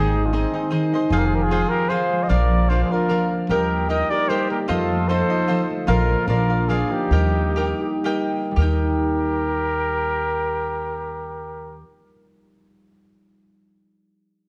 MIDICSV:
0, 0, Header, 1, 6, 480
1, 0, Start_track
1, 0, Key_signature, -3, "major"
1, 0, Tempo, 396825
1, 1344, Time_signature, 3, 2, 24, 8
1, 7588, Tempo, 430416
1, 9028, Tempo, 505476
1, 9988, Tempo, 547945
1, 15168, End_track
2, 0, Start_track
2, 0, Title_t, "Cavaquinho"
2, 0, Program_c, 0, 24
2, 0, Note_on_c, 0, 63, 69
2, 0, Note_on_c, 0, 68, 70
2, 0, Note_on_c, 0, 72, 79
2, 0, Note_on_c, 0, 75, 85
2, 384, Note_off_c, 0, 63, 0
2, 394, Note_off_c, 0, 75, 0
2, 398, Note_on_c, 0, 63, 56
2, 399, Note_off_c, 0, 68, 0
2, 399, Note_off_c, 0, 72, 0
2, 404, Note_on_c, 0, 68, 57
2, 404, Note_on_c, 0, 72, 68
2, 408, Note_on_c, 0, 75, 66
2, 634, Note_off_c, 0, 75, 0
2, 640, Note_off_c, 0, 72, 0
2, 646, Note_off_c, 0, 63, 0
2, 648, Note_on_c, 0, 75, 44
2, 649, Note_off_c, 0, 68, 0
2, 655, Note_on_c, 0, 72, 36
2, 670, Note_on_c, 0, 68, 31
2, 850, Note_off_c, 0, 68, 0
2, 850, Note_off_c, 0, 72, 0
2, 852, Note_on_c, 0, 63, 65
2, 862, Note_off_c, 0, 75, 0
2, 865, Note_on_c, 0, 68, 60
2, 865, Note_on_c, 0, 72, 65
2, 876, Note_on_c, 0, 75, 66
2, 1112, Note_off_c, 0, 63, 0
2, 1117, Note_off_c, 0, 75, 0
2, 1119, Note_off_c, 0, 68, 0
2, 1119, Note_off_c, 0, 72, 0
2, 1132, Note_on_c, 0, 75, 53
2, 1147, Note_on_c, 0, 72, 51
2, 1148, Note_on_c, 0, 68, 45
2, 1342, Note_off_c, 0, 68, 0
2, 1345, Note_off_c, 0, 72, 0
2, 1350, Note_off_c, 0, 75, 0
2, 1356, Note_on_c, 0, 68, 69
2, 1358, Note_on_c, 0, 65, 75
2, 1359, Note_on_c, 0, 72, 69
2, 1366, Note_on_c, 0, 77, 87
2, 1814, Note_off_c, 0, 68, 0
2, 1822, Note_off_c, 0, 65, 0
2, 1823, Note_off_c, 0, 72, 0
2, 1827, Note_on_c, 0, 65, 58
2, 1829, Note_on_c, 0, 68, 71
2, 1834, Note_off_c, 0, 77, 0
2, 1838, Note_on_c, 0, 72, 70
2, 1839, Note_on_c, 0, 77, 57
2, 2279, Note_off_c, 0, 65, 0
2, 2286, Note_off_c, 0, 72, 0
2, 2287, Note_off_c, 0, 68, 0
2, 2293, Note_on_c, 0, 65, 62
2, 2301, Note_on_c, 0, 72, 59
2, 2302, Note_on_c, 0, 68, 60
2, 2308, Note_off_c, 0, 77, 0
2, 2320, Note_on_c, 0, 77, 70
2, 2760, Note_off_c, 0, 77, 0
2, 2765, Note_off_c, 0, 65, 0
2, 2770, Note_on_c, 0, 62, 68
2, 2772, Note_off_c, 0, 68, 0
2, 2774, Note_on_c, 0, 77, 83
2, 2777, Note_on_c, 0, 70, 66
2, 2778, Note_off_c, 0, 72, 0
2, 2786, Note_on_c, 0, 74, 75
2, 3248, Note_off_c, 0, 62, 0
2, 3256, Note_off_c, 0, 77, 0
2, 3261, Note_off_c, 0, 70, 0
2, 3262, Note_off_c, 0, 74, 0
2, 3263, Note_on_c, 0, 62, 52
2, 3266, Note_on_c, 0, 70, 54
2, 3273, Note_on_c, 0, 77, 49
2, 3285, Note_on_c, 0, 74, 56
2, 3515, Note_off_c, 0, 74, 0
2, 3516, Note_off_c, 0, 62, 0
2, 3517, Note_off_c, 0, 70, 0
2, 3521, Note_off_c, 0, 77, 0
2, 3529, Note_on_c, 0, 74, 36
2, 3544, Note_on_c, 0, 77, 37
2, 3546, Note_on_c, 0, 70, 34
2, 3728, Note_off_c, 0, 70, 0
2, 3731, Note_off_c, 0, 77, 0
2, 3732, Note_on_c, 0, 62, 53
2, 3738, Note_off_c, 0, 74, 0
2, 3742, Note_on_c, 0, 70, 60
2, 3746, Note_on_c, 0, 77, 63
2, 3753, Note_on_c, 0, 74, 62
2, 4221, Note_off_c, 0, 62, 0
2, 4226, Note_off_c, 0, 70, 0
2, 4228, Note_off_c, 0, 77, 0
2, 4231, Note_off_c, 0, 74, 0
2, 4234, Note_on_c, 0, 67, 66
2, 4242, Note_on_c, 0, 70, 68
2, 4242, Note_on_c, 0, 75, 74
2, 4247, Note_on_c, 0, 79, 76
2, 4691, Note_off_c, 0, 67, 0
2, 4701, Note_off_c, 0, 70, 0
2, 4705, Note_on_c, 0, 67, 50
2, 4709, Note_off_c, 0, 79, 0
2, 4712, Note_off_c, 0, 75, 0
2, 4716, Note_on_c, 0, 70, 58
2, 4717, Note_on_c, 0, 75, 63
2, 4723, Note_on_c, 0, 79, 64
2, 4950, Note_off_c, 0, 79, 0
2, 4954, Note_off_c, 0, 75, 0
2, 4964, Note_off_c, 0, 67, 0
2, 4964, Note_on_c, 0, 79, 37
2, 4968, Note_on_c, 0, 75, 37
2, 4969, Note_off_c, 0, 70, 0
2, 4984, Note_on_c, 0, 70, 37
2, 5187, Note_off_c, 0, 70, 0
2, 5191, Note_off_c, 0, 79, 0
2, 5193, Note_off_c, 0, 75, 0
2, 5196, Note_on_c, 0, 67, 62
2, 5201, Note_on_c, 0, 70, 62
2, 5207, Note_on_c, 0, 75, 66
2, 5215, Note_on_c, 0, 79, 64
2, 5654, Note_off_c, 0, 70, 0
2, 5657, Note_off_c, 0, 75, 0
2, 5659, Note_on_c, 0, 69, 76
2, 5661, Note_off_c, 0, 67, 0
2, 5666, Note_off_c, 0, 79, 0
2, 5666, Note_on_c, 0, 65, 80
2, 5666, Note_on_c, 0, 72, 74
2, 5671, Note_on_c, 0, 75, 80
2, 6145, Note_off_c, 0, 69, 0
2, 6148, Note_off_c, 0, 72, 0
2, 6151, Note_off_c, 0, 75, 0
2, 6152, Note_off_c, 0, 65, 0
2, 6156, Note_on_c, 0, 65, 63
2, 6163, Note_on_c, 0, 69, 65
2, 6173, Note_on_c, 0, 72, 65
2, 6173, Note_on_c, 0, 75, 74
2, 6394, Note_off_c, 0, 75, 0
2, 6398, Note_off_c, 0, 72, 0
2, 6408, Note_off_c, 0, 65, 0
2, 6409, Note_on_c, 0, 75, 50
2, 6411, Note_off_c, 0, 69, 0
2, 6413, Note_on_c, 0, 72, 38
2, 6426, Note_on_c, 0, 69, 29
2, 6618, Note_off_c, 0, 69, 0
2, 6623, Note_on_c, 0, 65, 61
2, 6626, Note_off_c, 0, 72, 0
2, 6632, Note_off_c, 0, 75, 0
2, 6632, Note_on_c, 0, 69, 70
2, 6640, Note_on_c, 0, 72, 65
2, 6645, Note_on_c, 0, 75, 74
2, 7086, Note_off_c, 0, 65, 0
2, 7100, Note_off_c, 0, 75, 0
2, 7100, Note_on_c, 0, 65, 75
2, 7104, Note_off_c, 0, 69, 0
2, 7109, Note_off_c, 0, 72, 0
2, 7109, Note_on_c, 0, 70, 83
2, 7114, Note_on_c, 0, 75, 94
2, 7115, Note_on_c, 0, 77, 89
2, 7585, Note_off_c, 0, 65, 0
2, 7588, Note_off_c, 0, 70, 0
2, 7589, Note_off_c, 0, 77, 0
2, 7590, Note_on_c, 0, 62, 61
2, 7592, Note_off_c, 0, 75, 0
2, 7593, Note_on_c, 0, 70, 53
2, 7603, Note_on_c, 0, 77, 59
2, 7614, Note_on_c, 0, 74, 69
2, 7822, Note_off_c, 0, 74, 0
2, 7827, Note_off_c, 0, 77, 0
2, 7829, Note_off_c, 0, 62, 0
2, 7830, Note_off_c, 0, 70, 0
2, 7836, Note_on_c, 0, 74, 41
2, 7841, Note_on_c, 0, 77, 37
2, 7853, Note_on_c, 0, 70, 36
2, 8044, Note_off_c, 0, 70, 0
2, 8049, Note_off_c, 0, 74, 0
2, 8051, Note_on_c, 0, 62, 57
2, 8052, Note_off_c, 0, 77, 0
2, 8058, Note_on_c, 0, 70, 69
2, 8066, Note_on_c, 0, 77, 71
2, 8070, Note_on_c, 0, 74, 74
2, 8526, Note_off_c, 0, 62, 0
2, 8533, Note_off_c, 0, 74, 0
2, 8533, Note_off_c, 0, 77, 0
2, 8533, Note_on_c, 0, 67, 74
2, 8535, Note_off_c, 0, 70, 0
2, 8537, Note_on_c, 0, 75, 73
2, 8539, Note_on_c, 0, 70, 76
2, 8539, Note_on_c, 0, 79, 65
2, 9017, Note_off_c, 0, 67, 0
2, 9022, Note_on_c, 0, 67, 64
2, 9031, Note_off_c, 0, 70, 0
2, 9031, Note_off_c, 0, 75, 0
2, 9035, Note_on_c, 0, 70, 64
2, 9035, Note_on_c, 0, 75, 60
2, 9037, Note_off_c, 0, 79, 0
2, 9041, Note_on_c, 0, 79, 71
2, 9477, Note_off_c, 0, 67, 0
2, 9481, Note_on_c, 0, 67, 71
2, 9487, Note_off_c, 0, 70, 0
2, 9489, Note_off_c, 0, 75, 0
2, 9491, Note_on_c, 0, 70, 71
2, 9493, Note_on_c, 0, 75, 80
2, 9494, Note_off_c, 0, 79, 0
2, 9498, Note_on_c, 0, 79, 72
2, 9971, Note_off_c, 0, 67, 0
2, 9975, Note_on_c, 0, 67, 68
2, 9991, Note_off_c, 0, 70, 0
2, 9995, Note_on_c, 0, 70, 70
2, 10007, Note_off_c, 0, 75, 0
2, 10010, Note_on_c, 0, 75, 66
2, 10020, Note_off_c, 0, 79, 0
2, 10024, Note_on_c, 0, 79, 75
2, 13042, Note_off_c, 0, 67, 0
2, 13061, Note_off_c, 0, 70, 0
2, 13076, Note_off_c, 0, 75, 0
2, 13090, Note_off_c, 0, 79, 0
2, 15168, End_track
3, 0, Start_track
3, 0, Title_t, "Trumpet"
3, 0, Program_c, 1, 56
3, 0, Note_on_c, 1, 68, 83
3, 312, Note_on_c, 1, 65, 48
3, 330, Note_off_c, 1, 68, 0
3, 403, Note_on_c, 1, 63, 71
3, 421, Note_off_c, 1, 65, 0
3, 873, Note_off_c, 1, 63, 0
3, 1340, Note_on_c, 1, 68, 67
3, 1429, Note_on_c, 1, 70, 62
3, 1447, Note_off_c, 1, 68, 0
3, 1519, Note_on_c, 1, 68, 70
3, 1537, Note_off_c, 1, 70, 0
3, 1630, Note_on_c, 1, 70, 71
3, 1648, Note_off_c, 1, 68, 0
3, 1723, Note_on_c, 1, 68, 82
3, 1741, Note_off_c, 1, 70, 0
3, 2042, Note_on_c, 1, 70, 90
3, 2061, Note_off_c, 1, 68, 0
3, 2287, Note_on_c, 1, 72, 82
3, 2305, Note_off_c, 1, 70, 0
3, 2702, Note_on_c, 1, 75, 70
3, 2720, Note_off_c, 1, 72, 0
3, 2763, Note_on_c, 1, 74, 81
3, 2781, Note_off_c, 1, 75, 0
3, 3253, Note_on_c, 1, 72, 83
3, 3272, Note_off_c, 1, 74, 0
3, 3423, Note_off_c, 1, 72, 0
3, 3443, Note_on_c, 1, 72, 60
3, 3524, Note_on_c, 1, 70, 90
3, 3542, Note_off_c, 1, 72, 0
3, 4004, Note_off_c, 1, 70, 0
3, 4232, Note_on_c, 1, 70, 85
3, 4679, Note_off_c, 1, 70, 0
3, 4716, Note_on_c, 1, 75, 97
3, 4959, Note_on_c, 1, 74, 108
3, 4977, Note_off_c, 1, 75, 0
3, 5186, Note_on_c, 1, 72, 94
3, 5204, Note_off_c, 1, 74, 0
3, 5439, Note_off_c, 1, 72, 0
3, 5446, Note_on_c, 1, 70, 76
3, 5548, Note_off_c, 1, 70, 0
3, 5668, Note_on_c, 1, 69, 81
3, 6148, Note_on_c, 1, 72, 96
3, 6166, Note_off_c, 1, 69, 0
3, 6882, Note_off_c, 1, 72, 0
3, 7122, Note_on_c, 1, 70, 88
3, 7563, Note_off_c, 1, 70, 0
3, 7599, Note_on_c, 1, 70, 84
3, 8050, Note_on_c, 1, 68, 74
3, 8067, Note_off_c, 1, 70, 0
3, 8311, Note_on_c, 1, 67, 83
3, 8328, Note_off_c, 1, 68, 0
3, 9496, Note_off_c, 1, 67, 0
3, 9993, Note_on_c, 1, 70, 76
3, 12841, Note_off_c, 1, 70, 0
3, 15168, End_track
4, 0, Start_track
4, 0, Title_t, "Trumpet"
4, 0, Program_c, 2, 56
4, 0, Note_on_c, 2, 63, 71
4, 310, Note_on_c, 2, 62, 41
4, 328, Note_off_c, 2, 63, 0
4, 410, Note_on_c, 2, 60, 52
4, 428, Note_off_c, 2, 62, 0
4, 877, Note_off_c, 2, 60, 0
4, 1351, Note_on_c, 2, 65, 56
4, 1433, Note_on_c, 2, 67, 57
4, 1452, Note_off_c, 2, 65, 0
4, 1544, Note_on_c, 2, 65, 60
4, 1562, Note_off_c, 2, 67, 0
4, 1635, Note_on_c, 2, 67, 64
4, 1653, Note_off_c, 2, 65, 0
4, 1744, Note_on_c, 2, 65, 77
4, 1762, Note_off_c, 2, 67, 0
4, 2076, Note_on_c, 2, 67, 75
4, 2094, Note_off_c, 2, 65, 0
4, 2302, Note_on_c, 2, 68, 66
4, 2320, Note_off_c, 2, 67, 0
4, 2688, Note_on_c, 2, 72, 51
4, 2706, Note_off_c, 2, 68, 0
4, 2772, Note_on_c, 2, 70, 74
4, 2790, Note_off_c, 2, 72, 0
4, 3260, Note_on_c, 2, 65, 66
4, 3278, Note_off_c, 2, 70, 0
4, 3426, Note_off_c, 2, 65, 0
4, 3433, Note_on_c, 2, 68, 52
4, 3528, Note_on_c, 2, 65, 73
4, 3546, Note_off_c, 2, 68, 0
4, 4006, Note_off_c, 2, 65, 0
4, 4235, Note_on_c, 2, 67, 74
4, 4681, Note_off_c, 2, 67, 0
4, 4735, Note_on_c, 2, 70, 78
4, 4972, Note_off_c, 2, 70, 0
4, 4972, Note_on_c, 2, 70, 82
4, 5192, Note_on_c, 2, 67, 80
4, 5210, Note_off_c, 2, 70, 0
4, 5446, Note_off_c, 2, 67, 0
4, 5468, Note_on_c, 2, 67, 73
4, 5565, Note_off_c, 2, 67, 0
4, 5691, Note_on_c, 2, 65, 73
4, 6152, Note_on_c, 2, 69, 82
4, 6170, Note_off_c, 2, 65, 0
4, 6884, Note_off_c, 2, 69, 0
4, 7102, Note_on_c, 2, 65, 77
4, 7552, Note_off_c, 2, 65, 0
4, 7593, Note_on_c, 2, 65, 62
4, 8050, Note_off_c, 2, 65, 0
4, 8050, Note_on_c, 2, 65, 69
4, 8292, Note_on_c, 2, 63, 58
4, 8308, Note_off_c, 2, 65, 0
4, 9487, Note_off_c, 2, 63, 0
4, 9989, Note_on_c, 2, 67, 77
4, 12836, Note_off_c, 2, 67, 0
4, 15168, End_track
5, 0, Start_track
5, 0, Title_t, "Harp"
5, 0, Program_c, 3, 46
5, 0, Note_on_c, 3, 51, 79
5, 0, Note_on_c, 3, 58, 67
5, 0, Note_on_c, 3, 63, 77
5, 163, Note_on_c, 3, 56, 65
5, 390, Note_on_c, 3, 60, 69
5, 640, Note_off_c, 3, 63, 0
5, 645, Note_on_c, 3, 63, 87
5, 850, Note_off_c, 3, 51, 0
5, 865, Note_on_c, 3, 51, 66
5, 926, Note_off_c, 3, 56, 0
5, 1113, Note_on_c, 3, 56, 66
5, 1344, Note_on_c, 3, 53, 79
5, 1404, Note_off_c, 3, 51, 0
5, 1404, Note_off_c, 3, 56, 0
5, 1593, Note_on_c, 3, 56, 64
5, 1812, Note_off_c, 3, 60, 0
5, 1817, Note_on_c, 3, 60, 66
5, 2068, Note_on_c, 3, 65, 70
5, 2282, Note_off_c, 3, 53, 0
5, 2296, Note_on_c, 3, 53, 68
5, 2545, Note_off_c, 3, 56, 0
5, 2560, Note_on_c, 3, 56, 65
5, 2772, Note_off_c, 3, 53, 0
5, 2786, Note_on_c, 3, 53, 80
5, 2837, Note_off_c, 3, 56, 0
5, 2841, Note_off_c, 3, 58, 0
5, 3032, Note_on_c, 3, 58, 56
5, 3261, Note_on_c, 3, 62, 66
5, 3334, Note_off_c, 3, 63, 0
5, 3510, Note_off_c, 3, 65, 0
5, 3515, Note_on_c, 3, 65, 67
5, 3733, Note_off_c, 3, 53, 0
5, 3747, Note_on_c, 3, 53, 65
5, 3995, Note_off_c, 3, 58, 0
5, 4000, Note_on_c, 3, 58, 54
5, 4227, Note_on_c, 3, 55, 85
5, 4286, Note_off_c, 3, 53, 0
5, 4476, Note_off_c, 3, 58, 0
5, 4481, Note_on_c, 3, 58, 61
5, 4709, Note_on_c, 3, 63, 67
5, 4781, Note_off_c, 3, 62, 0
5, 4967, Note_on_c, 3, 67, 77
5, 5178, Note_off_c, 3, 55, 0
5, 5193, Note_on_c, 3, 55, 70
5, 5446, Note_off_c, 3, 60, 0
5, 5448, Note_off_c, 3, 58, 0
5, 5453, Note_on_c, 3, 58, 60
5, 5679, Note_on_c, 3, 53, 80
5, 5732, Note_off_c, 3, 55, 0
5, 5936, Note_on_c, 3, 57, 67
5, 6009, Note_off_c, 3, 58, 0
5, 6149, Note_off_c, 3, 63, 0
5, 6154, Note_on_c, 3, 63, 71
5, 6415, Note_off_c, 3, 65, 0
5, 6420, Note_on_c, 3, 65, 73
5, 6631, Note_off_c, 3, 53, 0
5, 6646, Note_on_c, 3, 53, 68
5, 6894, Note_off_c, 3, 57, 0
5, 6899, Note_on_c, 3, 57, 64
5, 7103, Note_off_c, 3, 53, 0
5, 7117, Note_on_c, 3, 53, 85
5, 7365, Note_on_c, 3, 58, 76
5, 7438, Note_off_c, 3, 57, 0
5, 7590, Note_on_c, 3, 62, 76
5, 7645, Note_off_c, 3, 53, 0
5, 7657, Note_off_c, 3, 63, 0
5, 7797, Note_off_c, 3, 67, 0
5, 7818, Note_off_c, 3, 65, 0
5, 7823, Note_on_c, 3, 65, 89
5, 8045, Note_on_c, 3, 53, 70
5, 8298, Note_off_c, 3, 58, 0
5, 8303, Note_on_c, 3, 58, 72
5, 8522, Note_on_c, 3, 55, 88
5, 8579, Note_off_c, 3, 53, 0
5, 8782, Note_off_c, 3, 58, 0
5, 8786, Note_on_c, 3, 58, 69
5, 9022, Note_on_c, 3, 63, 67
5, 9080, Note_off_c, 3, 62, 0
5, 9264, Note_on_c, 3, 67, 73
5, 9479, Note_off_c, 3, 55, 0
5, 9490, Note_on_c, 3, 55, 66
5, 9745, Note_off_c, 3, 58, 0
5, 9748, Note_on_c, 3, 58, 58
5, 9916, Note_off_c, 3, 55, 0
5, 9927, Note_on_c, 3, 55, 78
5, 9980, Note_off_c, 3, 58, 0
5, 9984, Note_on_c, 3, 58, 70
5, 10031, Note_off_c, 3, 63, 0
5, 10034, Note_on_c, 3, 63, 80
5, 10366, Note_off_c, 3, 65, 0
5, 11382, Note_off_c, 3, 67, 0
5, 12831, Note_off_c, 3, 58, 0
5, 12881, Note_off_c, 3, 63, 0
5, 13057, Note_off_c, 3, 55, 0
5, 15168, End_track
6, 0, Start_track
6, 0, Title_t, "Upright bass"
6, 0, Program_c, 4, 32
6, 0, Note_on_c, 4, 32, 87
6, 528, Note_off_c, 4, 32, 0
6, 1336, Note_on_c, 4, 29, 87
6, 1959, Note_off_c, 4, 29, 0
6, 2781, Note_on_c, 4, 34, 89
6, 3406, Note_off_c, 4, 34, 0
6, 4226, Note_on_c, 4, 39, 79
6, 4854, Note_off_c, 4, 39, 0
6, 5674, Note_on_c, 4, 41, 79
6, 6297, Note_off_c, 4, 41, 0
6, 7111, Note_on_c, 4, 34, 92
6, 7423, Note_off_c, 4, 34, 0
6, 7592, Note_on_c, 4, 34, 91
6, 8199, Note_off_c, 4, 34, 0
6, 8521, Note_on_c, 4, 39, 80
6, 9176, Note_off_c, 4, 39, 0
6, 9982, Note_on_c, 4, 39, 79
6, 12829, Note_off_c, 4, 39, 0
6, 15168, End_track
0, 0, End_of_file